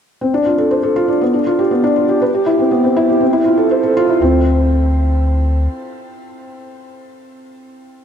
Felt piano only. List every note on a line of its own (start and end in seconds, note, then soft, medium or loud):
0.21 0.33 C4 medium
0.34 0.41 D4 medium
0.46 0.53 F4 medium
0.58 0.66 A4 medium
0.71 0.78 C5 medium
0.83 0.91 A4 medium
0.96 1.08 F4 medium
1.08 1.20 D4 medium
1.21 1.33 B3 medium
1.34 1.41 D4 medium
1.47 1.58 F4 medium
1.59 1.71 G4 medium
1.71 1.83 B3 medium
1.84 1.91 D4 medium
1.96 2.03 F4 medium
2.09 2.16 G4 medium
2.22 2.29 B4 medium
2.34 2.41 G4 medium
2.46 2.58 E4 medium
2.59 2.71 C4 medium
2.71 2.83 B3 medium
2.84 2.91 C4 medium
2.97 3.08 E4 loud
3.09 3.21 G4 medium
3.21 3.33 C4 medium
3.33 3.41 E4 medium
3.45 3.53 F4 medium
3.58 3.65 A4 medium
3.71 3.78 C5 medium
3.83 3.91 A4 medium
3.97 4.08 F4 loud
4.09 4.21 E4 medium
4.22 4.45 C4 medium